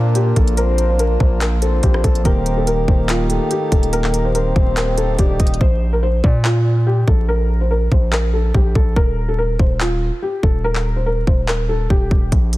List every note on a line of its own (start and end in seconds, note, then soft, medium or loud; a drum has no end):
0.00 0.33 A#2 loud
0.00 2.21 A#3 medium
0.00 2.22 A#3 medium
0.00 2.22 D4 medium
0.00 0.13 F4 medium
0.00 2.21 F4 medium
0.00 2.22 F4 medium
0.00 0.53 A#4 medium
0.00 2.22 D5 medium
0.15 0.32 G4 medium
0.15 closed hi-hat medium
0.36 1.17 A#1 loud
0.36 0.53 A4 medium
0.36 kick loud
0.36 closed hi-hat medium
0.47 closed hi-hat soft
0.57 0.87 A#4 loud
0.57 0.97 C5 loud
0.57 closed hi-hat medium
0.78 closed hi-hat medium
0.90 0.97 C5 medium
0.99 1.16 A#4 medium
0.99 1.59 A#4 medium
0.99 closed hi-hat medium
1.20 1.81 A#1 loud
1.20 1.36 C5 medium
1.20 kick loud
1.41 1.57 A#4 medium
1.41 clap loud
1.41 closed hi-hat medium
1.62 1.78 A4 medium
1.62 2.21 C5 loud
1.62 closed hi-hat medium
1.83 2.03 A#1 loud
1.83 1.99 G4 medium
1.83 kick medium
1.83 closed hi-hat medium
1.94 cross-stick loud
2.04 2.24 A#1 loud
2.04 2.20 A4 medium
2.04 kick loud
2.04 closed hi-hat medium
2.15 closed hi-hat soft
2.24 2.86 D#1 loud
2.24 5.56 D#3 medium
2.24 5.58 D#3 medium
2.24 5.57 A#3 medium
2.24 5.58 A#3 medium
2.24 5.58 D#4 medium
2.24 5.58 G4 medium
2.24 5.57 G4 medium
2.24 2.55 A#4 loud
2.24 2.65 C5 medium
2.24 kick loud
2.24 closed hi-hat medium
2.46 closed hi-hat medium
2.57 2.65 A4 medium
2.67 3.26 A#4 medium
2.67 2.83 A#4 medium
2.67 closed hi-hat medium
2.88 3.39 D#1 loud
2.88 3.04 C5 medium
2.88 kick loud
3.09 3.48 F4 medium
3.09 clap loud
3.09 closed hi-hat medium
3.30 3.89 A4 medium
3.30 closed hi-hat medium
3.51 3.67 G4 medium
3.51 closed hi-hat medium
3.72 4.53 D#1 loud
3.72 3.88 A4 medium
3.72 kick loud
3.72 closed hi-hat medium
3.83 closed hi-hat soft
3.93 4.23 A#4 loud
3.93 4.32 A#4 loud
3.93 closed hi-hat medium
4.04 clap medium
4.14 closed hi-hat medium
4.25 4.33 C5 medium
4.35 4.51 A#4 medium
4.35 5.15 C5 loud
4.35 closed hi-hat medium
4.56 5.16 D#1 loud
4.56 4.72 C5 medium
4.56 kick loud
4.77 4.93 A#4 medium
4.77 clap loud
4.77 closed hi-hat medium
4.98 5.14 A4 medium
4.98 closed hi-hat medium
5.19 5.39 D#1 loud
5.19 5.58 G4 medium
5.19 5.39 D5 medium
5.19 kick medium
5.19 closed hi-hat medium
5.40 5.60 D#1 loud
5.40 5.60 D#5 medium
5.40 kick loud
5.40 closed hi-hat medium
5.40 open hi-hat medium
5.47 closed hi-hat medium
5.54 closed hi-hat soft
5.61 6.21 A#1 loud
5.61 5.91 C5 loud
5.61 kick loud
5.93 6.00 A#4 medium
6.03 6.19 C5 medium
6.24 7.04 A#2 loud
6.24 6.40 D5 medium
6.24 kick loud
6.45 6.84 F4 medium
6.45 clap loud
6.87 7.03 G4 medium
7.08 7.88 A#1 loud
7.08 7.24 A4 medium
7.08 kick loud
7.29 7.59 A#4 medium
7.61 7.68 C5 medium
7.71 7.87 A#4 medium
7.92 8.52 A#1 loud
7.92 8.08 C5 medium
7.92 kick medium
8.12 8.29 A#4 medium
8.12 clap loud
8.34 8.50 A4 medium
8.54 8.75 A#1 loud
8.54 8.71 G4 medium
8.54 kick medium
8.75 8.96 A#1 loud
8.75 8.92 A4 medium
8.75 kick loud
8.96 9.57 D#1 loud
8.96 9.27 A#4 loud
8.96 kick loud
9.29 9.36 A4 medium
9.38 9.55 A#4 medium
9.59 10.10 D#1 loud
9.59 9.76 C5 medium
9.59 kick medium
9.80 10.20 F4 medium
9.80 clap loud
10.22 10.39 G4 medium
10.43 11.24 D#1 loud
10.43 10.59 A4 medium
10.43 kick loud
10.64 10.95 A#4 loud
10.75 clap medium
10.96 11.04 C5 medium
11.06 11.22 A#4 medium
11.27 11.88 D#1 loud
11.27 11.43 C5 medium
11.27 kick medium
11.48 11.64 A#4 medium
11.48 clap loud
11.69 11.85 A4 medium
11.90 12.10 D#1 loud
11.90 12.30 G4 medium
11.90 kick medium
12.11 12.31 D#1 loud
12.11 kick loud
12.32 12.57 A#1 loud
12.32 kick loud
12.32 closed hi-hat medium
12.53 closed hi-hat medium